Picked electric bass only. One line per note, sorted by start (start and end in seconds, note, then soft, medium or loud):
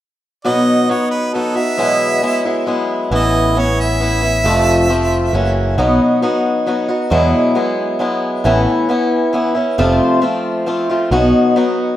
3.11 4.42 A1 medium
4.44 5.32 F1 medium
5.33 5.77 F#1 medium
5.77 5.99 B1 medium
7.11 7.32 E2 medium
8.45 8.66 A1 medium
9.79 9.99 F1 loud
11.11 11.32 B1 medium